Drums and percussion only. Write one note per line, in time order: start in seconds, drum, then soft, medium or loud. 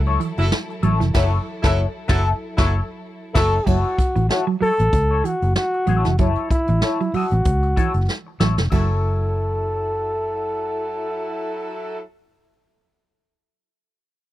0.06 closed hi-hat soft
0.20 closed hi-hat medium
0.37 closed hi-hat medium
0.52 snare loud
0.69 closed hi-hat soft
0.83 closed hi-hat medium
1.01 snare soft
1.01 closed hi-hat medium
1.14 kick medium
1.14 snare loud
1.14 crash medium
1.64 kick loud
1.64 snare loud
2.09 kick loud
2.09 snare loud
2.58 kick loud
2.58 snare loud
3.35 kick loud
3.35 snare loud
3.35 crash medium
3.67 kick medium
3.67 crash medium
3.84 closed hi-hat soft
3.98 kick medium
3.98 closed hi-hat medium
4.16 closed hi-hat medium
4.30 snare loud
4.62 open hi-hat medium
4.79 closed hi-hat medium
4.92 kick medium
4.92 closed hi-hat medium
5.25 closed hi-hat medium
5.42 closed hi-hat medium
5.56 snare loud
5.73 closed hi-hat soft
5.87 closed hi-hat medium
6.04 snare soft
6.04 closed hi-hat medium
6.18 kick medium
6.18 closed hi-hat medium
6.35 closed hi-hat soft
6.50 kick medium
6.50 closed hi-hat medium
6.67 closed hi-hat medium
6.82 snare loud
7.00 closed hi-hat soft
7.14 open hi-hat medium
7.31 closed hi-hat medium
7.45 kick loud
7.45 closed hi-hat loud
7.62 closed hi-hat soft
7.77 kick medium
7.77 closed hi-hat medium
7.94 closed hi-hat soft
8.08 snare medium
8.40 snare loud
8.58 snare loud
8.72 kick medium
8.72 crash medium